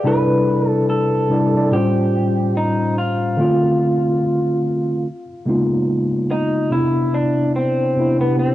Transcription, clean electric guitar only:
0.07 0.68 B4 loud
0.68 0.89 A4 loud
0.90 1.68 A4 loud
1.73 2.52 G4 loud
2.57 2.95 D#4 medium
2.98 5.43 F4 medium
6.31 6.69 D#4 loud
6.72 7.15 E4 loud
7.14 7.55 D4 loud
7.56 8.20 C4 loud
8.21 8.37 B3 medium
8.39 8.55 C4 medium

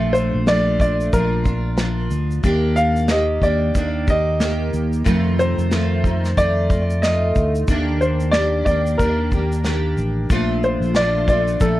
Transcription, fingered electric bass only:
0.00 0.30 A#1 medium
0.34 1.09 A#1 medium
1.13 2.07 A#1 loud
2.11 2.41 D2 medium
2.44 3.38 D#2 loud
3.42 3.72 D#2 medium
3.75 4.69 D#2 loud
4.73 5.03 D#2 medium
5.06 5.55 F2 loud
5.58 6.33 F2 medium
6.37 7.32 F2 loud
7.35 7.66 D2 medium
7.68 8.62 D#2 loud
8.66 8.96 D#2 medium
9.00 9.94 D#2 medium
9.97 10.27 A1 medium
10.30 10.78 A#1 medium
10.80 11.56 A#1 loud
11.60 11.80 A#1 loud

